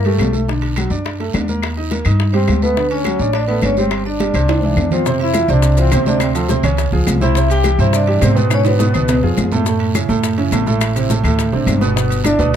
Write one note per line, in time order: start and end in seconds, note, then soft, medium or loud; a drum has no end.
0.00 0.16 G2 loud
0.05 0.29 G3 medium
0.05 0.32 A3 medium
0.05 0.29 G4 medium
0.05 0.32 A4 medium
0.05 high bongo soft
0.05 high conga soft
0.05 high timbale medium
0.18 0.85 B1 medium
0.18 high bongo soft
0.18 low bongo medium
0.18 high conga medium
0.18 high timbale medium
0.18 low timbale medium
0.18 short guiro medium
0.18 claves medium
0.33 0.45 A3 medium
0.33 0.45 A4 medium
0.33 high conga medium
0.33 short guiro medium
0.48 0.72 D3 medium
0.48 0.72 D4 medium
0.48 high bongo medium
0.48 high conga soft
0.48 long guiro medium
0.62 high bongo soft
0.62 high conga soft
0.62 high timbale medium
0.76 0.89 F#3 medium
0.76 0.89 F#4 medium
0.76 high bongo medium
0.76 high conga medium
0.76 high timbale medium
0.76 low timbale medium
0.76 short guiro medium
0.76 claves medium
0.90 1.30 F#2 medium
0.90 1.14 D4 medium
0.90 1.14 D5 medium
0.90 high bongo soft
0.90 high conga soft
0.90 short guiro medium
1.05 high bongo medium
1.05 high conga soft
1.05 high timbale medium
1.05 long guiro medium
1.20 1.31 A3 medium
1.20 1.32 A4 medium
1.20 high bongo soft
1.20 high conga soft
1.20 high timbale medium
1.33 2.00 D#2 medium
1.33 1.46 D4 medium
1.33 1.46 D5 medium
1.33 high bongo soft
1.33 low bongo medium
1.33 high conga medium
1.33 high timbale medium
1.33 low timbale medium
1.33 short guiro medium
1.33 claves medium
1.48 1.72 A#3 medium
1.48 1.72 A#4 medium
1.48 high conga medium
1.48 short guiro medium
1.62 high bongo medium
1.62 high conga soft
1.62 high timbale medium
1.62 long guiro medium
1.62 claves medium
1.77 1.89 D#4 medium
1.77 1.89 D#5 medium
1.77 high bongo soft
1.77 high conga soft
1.91 2.03 A#3 medium
1.91 2.03 A#4 medium
1.91 high bongo medium
1.91 high conga medium
1.91 high timbale medium
1.91 low timbale medium
1.91 short guiro medium
2.05 2.45 G2 medium
2.05 2.29 D#4 medium
2.05 2.29 D#5 medium
2.05 high bongo soft
2.05 high conga soft
2.05 high timbale medium
2.05 short guiro medium
2.05 claves medium
2.19 high bongo medium
2.19 high conga soft
2.19 long guiro medium
2.33 2.57 G3 medium
2.33 2.61 C4 medium
2.33 2.57 G4 medium
2.33 2.60 C5 medium
2.33 high bongo soft
2.33 high conga soft
2.33 high timbale medium
2.48 3.14 D2 medium
2.48 high bongo soft
2.48 low bongo medium
2.48 high conga medium
2.48 high timbale medium
2.48 low timbale medium
2.48 short guiro medium
2.48 claves medium
2.62 2.74 A3 medium
2.62 2.90 B3 medium
2.62 2.74 A4 medium
2.62 2.89 B4 medium
2.62 high conga medium
2.62 short guiro medium
2.76 3.00 D3 medium
2.76 3.00 D4 medium
2.76 high bongo medium
2.76 high conga soft
2.76 long guiro medium
2.90 3.31 C#4 medium
2.90 3.36 C#5 medium
2.90 high bongo soft
2.90 high conga soft
2.90 high timbale medium
3.05 3.17 F#3 medium
3.05 3.18 F#4 medium
3.05 high bongo medium
3.05 high conga medium
3.05 high timbale medium
3.05 low timbale medium
3.05 short guiro medium
3.05 claves medium
3.19 3.60 A1 medium
3.19 3.44 D4 medium
3.19 3.44 D5 medium
3.19 high bongo soft
3.19 high conga soft
3.19 short guiro medium
3.33 3.47 D4 medium
3.33 3.48 D5 loud
3.33 high bongo medium
3.33 high conga soft
3.33 high timbale medium
3.33 long guiro medium
3.48 3.61 A3 medium
3.48 3.61 B3 medium
3.48 3.61 A4 medium
3.48 3.63 B4 medium
3.48 high bongo soft
3.48 high conga soft
3.48 high timbale medium
3.62 4.29 G1 medium
3.62 3.77 C#4 medium
3.62 3.75 D4 medium
3.62 3.77 C#5 loud
3.62 3.75 D5 medium
3.62 high bongo soft
3.62 low bongo medium
3.62 high conga medium
3.62 high timbale medium
3.62 low timbale medium
3.62 short guiro medium
3.62 claves medium
3.77 4.01 G3 medium
3.77 4.05 C4 medium
3.77 4.01 G4 medium
3.77 4.04 C5 medium
3.77 high conga medium
3.77 short guiro medium
3.91 high bongo medium
3.91 high timbale medium
3.91 long guiro medium
3.91 claves medium
4.06 4.17 D4 medium
4.06 4.88 D4 medium
4.06 4.18 D5 medium
4.06 4.88 D5 medium
4.06 high bongo soft
4.06 high conga soft
4.20 4.32 G3 medium
4.20 4.32 G4 medium
4.20 high bongo medium
4.20 high conga medium
4.20 high timbale medium
4.20 low timbale medium
4.20 short guiro medium
4.34 4.74 C2 medium
4.34 4.58 C4 medium
4.34 4.58 C5 medium
4.34 high bongo soft
4.34 high conga soft
4.34 high timbale medium
4.34 short guiro medium
4.34 claves medium
4.48 high bongo medium
4.48 high conga soft
4.48 high timbale medium
4.48 long guiro medium
4.62 4.87 E3 medium
4.62 4.87 E4 medium
4.62 high bongo soft
4.62 high conga medium
4.62 high timbale medium
4.76 5.43 F2 medium
4.76 high bongo soft
4.76 low bongo medium
4.76 low conga medium
4.76 low timbale medium
4.76 short guiro medium
4.76 claves medium
4.91 5.03 F3 medium
4.91 5.19 C4 medium
4.91 5.04 F4 medium
4.91 5.19 C5 medium
4.91 low conga medium
4.91 low timbale medium
4.91 short guiro medium
5.06 5.30 C3 medium
5.06 5.30 C4 medium
5.06 5.30 C5 medium
5.06 high bongo medium
5.06 high conga soft
5.06 long guiro medium
5.06 maracas medium
5.20 5.48 E4 medium
5.20 5.48 E5 loud
5.20 high conga soft
5.20 high timbale medium
5.34 5.47 E3 medium
5.34 5.47 E4 medium
5.34 5.47 F4 medium
5.34 high bongo medium
5.34 high conga loud
5.34 high timbale loud
5.34 low timbale medium
5.34 short guiro medium
5.34 claves medium
5.34 maracas medium
5.48 5.89 C2 loud
5.48 5.73 C3 medium
5.48 5.73 C4 medium
5.48 5.77 D4 medium
5.48 5.73 C5 medium
5.48 5.76 D5 loud
5.48 high bongo soft
5.48 high conga soft
5.48 short guiro medium
5.48 maracas soft
5.62 high bongo medium
5.62 high conga soft
5.62 high timbale medium
5.62 long guiro medium
5.62 maracas medium
5.77 5.90 E3 medium
5.77 6.06 C4 medium
5.77 5.90 E4 medium
5.77 5.90 F4 medium
5.77 6.08 C5 medium
5.77 high bongo soft
5.77 high conga soft
5.77 high timbale medium
5.77 maracas medium
5.91 6.58 D2 loud
5.91 6.04 C3 medium
5.91 6.04 C4 medium
5.91 6.04 C5 medium
5.91 high bongo soft
5.91 low bongo medium
5.91 high conga soft
5.91 high timbale medium
5.91 low timbale medium
5.91 short guiro medium
5.91 claves medium
5.91 maracas medium
6.06 6.30 C3 medium
6.06 6.30 C4 medium
6.06 6.20 D4 medium
6.06 6.30 C5 medium
6.06 6.22 D5 medium
6.06 high bongo soft
6.06 high conga medium
6.06 short guiro medium
6.06 maracas soft
6.20 6.61 C4 medium
6.20 6.62 C5 medium
6.20 high bongo medium
6.20 high conga soft
6.20 high timbale medium
6.20 long guiro medium
6.20 claves medium
6.20 maracas medium
6.35 6.47 F3 medium
6.35 6.47 F4 medium
6.35 6.47 A4 medium
6.35 high conga soft
6.35 high timbale medium
6.35 maracas medium
6.48 6.61 C3 medium
6.48 6.61 C4 medium
6.48 6.61 C5 medium
6.48 high bongo medium
6.48 high conga medium
6.48 low timbale medium
6.48 short guiro medium
6.48 maracas medium
6.63 6.90 C#2 loud
6.63 6.88 C#3 medium
6.63 6.88 C#4 medium
6.63 6.88 C#5 medium
6.63 high bongo soft
6.63 high conga soft
6.63 low conga medium
6.63 high timbale medium
6.63 short guiro medium
6.63 claves medium
6.63 maracas soft
6.77 high bongo medium
6.77 high conga soft
6.77 high timbale medium
6.77 long guiro medium
6.77 maracas medium
6.92 7.06 C#2 medium
6.92 7.16 F3 medium
6.92 7.16 F4 medium
6.92 7.16 G#4 medium
6.92 high bongo soft
6.92 high conga soft
7.07 7.74 C2 medium
7.07 high bongo soft
7.07 low bongo medium
7.07 high conga medium
7.07 high timbale medium
7.07 low timbale medium
7.07 short guiro medium
7.07 claves medium
7.07 maracas medium
7.21 7.33 C3 medium
7.21 7.33 C4 medium
7.21 7.48 E4 medium
7.21 7.34 C5 medium
7.21 7.49 E5 loud
7.21 high bongo soft
7.21 high conga medium
7.21 short guiro medium
7.21 maracas soft
7.35 7.60 C3 medium
7.35 7.60 C4 medium
7.35 7.60 C5 medium
7.35 high bongo medium
7.35 high conga soft
7.35 long guiro medium
7.35 maracas medium
7.50 7.77 G4 medium
7.50 7.81 G5 loud
7.50 high conga soft
7.50 high timbale medium
7.50 maracas medium
7.64 7.77 E3 medium
7.64 7.77 E4 medium
7.64 7.77 G4 medium
7.64 high bongo medium
7.64 high conga medium
7.64 high timbale medium
7.64 low timbale medium
7.64 short guiro medium
7.64 claves medium
7.64 maracas medium
7.78 8.19 G2 loud
7.78 8.03 C3 medium
7.78 8.03 C4 medium
7.78 7.94 E4 medium
7.78 8.03 C5 medium
7.78 7.94 E5 medium
7.78 high bongo soft
7.78 high conga soft
7.78 short guiro medium
7.78 maracas soft
7.93 8.21 D4 medium
7.93 8.24 D5 loud
7.93 high bongo medium
7.93 high conga soft
7.93 high timbale medium
7.93 long guiro medium
7.93 maracas medium
8.07 8.19 E3 medium
8.07 8.20 E4 medium
8.07 8.20 G4 medium
8.07 high bongo soft
8.07 high conga soft
8.07 high timbale medium
8.21 8.89 G#2 loud
8.21 8.33 C3 medium
8.21 8.33 C4 medium
8.21 8.50 C4 medium
8.21 8.34 C5 medium
8.21 8.53 C5 medium
8.21 high bongo soft
8.21 low bongo medium
8.21 high conga soft
8.21 high timbale medium
8.21 low timbale medium
8.21 short guiro medium
8.21 claves medium
8.21 maracas medium
8.35 8.60 B2 medium
8.35 8.60 B3 medium
8.35 8.60 B4 medium
8.35 high bongo soft
8.35 high conga medium
8.35 short guiro medium
8.35 maracas soft
8.50 8.65 C#4 medium
8.50 8.67 C#5 medium
8.50 high bongo medium
8.50 high conga soft
8.50 high timbale medium
8.50 long guiro medium
8.50 claves medium
8.50 maracas medium
8.65 8.77 D3 medium
8.65 9.20 B3 medium
8.65 8.77 D4 medium
8.65 8.77 F#4 medium
8.65 9.20 B4 medium
8.65 high conga soft
8.65 high timbale medium
8.65 maracas medium
8.79 8.91 B2 medium
8.79 8.91 B3 medium
8.79 8.92 B4 medium
8.79 high bongo medium
8.79 high conga loud
8.79 high timbale medium
8.79 short guiro medium
8.79 maracas medium
8.93 9.21 C#2 loud
8.93 9.17 B2 medium
8.93 9.18 B3 medium
8.93 9.18 B4 medium
8.93 high bongo soft
8.93 high conga soft
8.93 low conga medium
8.93 short guiro medium
8.93 claves medium
8.93 maracas soft
9.08 high bongo medium
9.08 high conga soft
9.08 low timbale medium
9.08 long guiro medium
9.08 maracas medium
9.23 9.36 F2 medium
9.23 9.46 F3 medium
9.23 9.47 F4 medium
9.23 9.47 G#4 medium
9.23 high bongo soft
9.23 high conga soft
9.37 10.04 F#2 medium
9.37 high bongo soft
9.37 low bongo medium
9.37 high conga medium
9.37 low timbale medium
9.37 short guiro medium
9.37 claves medium
9.37 maracas medium
9.52 9.64 A2 medium
9.52 9.64 A3 medium
9.52 9.64 A4 medium
9.52 high bongo soft
9.52 high conga medium
9.52 low timbale medium
9.52 short guiro medium
9.52 maracas soft
9.66 9.90 A2 medium
9.66 9.90 A3 medium
9.66 9.90 A4 medium
9.66 high bongo medium
9.66 long guiro medium
9.66 maracas medium
9.80 high conga soft
9.80 high timbale medium
9.95 10.07 C#3 medium
9.95 10.07 C#4 medium
9.95 10.07 E4 medium
9.95 high bongo medium
9.95 high conga medium
9.95 high timbale loud
9.95 low timbale medium
9.95 short guiro medium
9.95 claves medium
9.95 maracas medium
10.09 10.49 F#2 loud
10.09 10.33 A2 medium
10.09 10.33 A3 medium
10.09 10.33 A4 medium
10.09 high bongo soft
10.09 short guiro medium
10.09 maracas soft
10.23 high bongo medium
10.23 high conga soft
10.23 high timbale medium
10.23 long guiro medium
10.23 maracas medium
10.37 10.50 C#3 medium
10.37 10.50 C#4 medium
10.37 10.50 E4 medium
10.37 high bongo soft
10.37 high conga soft
10.37 high timbale medium
10.52 11.19 A1 medium
10.52 10.64 A2 medium
10.52 10.64 A3 medium
10.52 10.65 A4 medium
10.52 high bongo soft
10.52 low bongo medium
10.52 high conga soft
10.52 high timbale medium
10.52 low timbale medium
10.52 short guiro medium
10.52 claves medium
10.52 maracas medium
10.66 10.90 A2 medium
10.66 10.91 A3 medium
10.66 10.91 A4 medium
10.66 high bongo soft
10.66 high conga medium
10.66 short guiro medium
10.66 maracas soft
10.81 high bongo medium
10.81 high conga soft
10.81 high timbale loud
10.81 long guiro medium
10.81 claves medium
10.81 maracas medium
10.95 11.07 C3 medium
10.95 11.07 C4 medium
10.95 11.08 E4 medium
10.95 high conga soft
10.95 high timbale medium
10.95 maracas medium
11.10 11.22 A2 medium
11.10 11.22 A3 medium
11.10 11.22 A4 medium
11.10 high bongo medium
11.10 high conga loud
11.10 low timbale medium
11.10 short guiro medium
11.10 maracas medium
11.23 11.51 D2 loud
11.23 11.48 A2 medium
11.23 11.48 A3 medium
11.23 11.49 A4 medium
11.23 high bongo soft
11.23 high conga soft
11.23 low conga medium
11.23 high timbale medium
11.23 short guiro medium
11.23 claves medium
11.23 maracas soft
11.39 high bongo medium
11.39 high conga soft
11.39 high timbale medium
11.39 long guiro medium
11.39 maracas medium
11.52 11.66 A1 medium
11.52 11.76 C3 medium
11.52 11.77 C4 medium
11.52 11.77 D4 medium
11.52 high bongo soft
11.52 high conga soft
11.66 12.34 G1 loud
11.66 high bongo soft
11.66 low bongo medium
11.66 high conga medium
11.66 high timbale medium
11.66 low timbale medium
11.66 short guiro medium
11.66 claves medium
11.66 maracas medium
11.81 11.93 B2 medium
11.81 11.93 B3 medium
11.81 11.93 B4 medium
11.81 high bongo soft
11.81 high conga medium
11.81 short guiro medium
11.81 maracas soft
11.96 12.20 B2 medium
11.96 12.20 B3 medium
11.96 12.20 B4 medium
11.96 high bongo medium
11.96 long guiro medium
11.96 maracas medium
12.10 high conga soft
12.10 high timbale medium
12.10 maracas medium
12.24 12.37 D3 medium
12.24 12.36 D4 medium
12.24 12.52 D4 medium
12.24 12.37 E4 medium
12.24 12.53 D5 loud
12.24 high bongo medium
12.24 high conga loud
12.24 high timbale medium
12.24 low timbale medium
12.24 short guiro medium
12.24 claves medium
12.24 maracas medium
12.39 12.56 D2 loud
12.39 12.56 B2 medium
12.39 12.56 B3 medium
12.39 12.56 B4 medium
12.39 high bongo soft
12.39 high conga soft
12.39 short guiro medium
12.39 maracas soft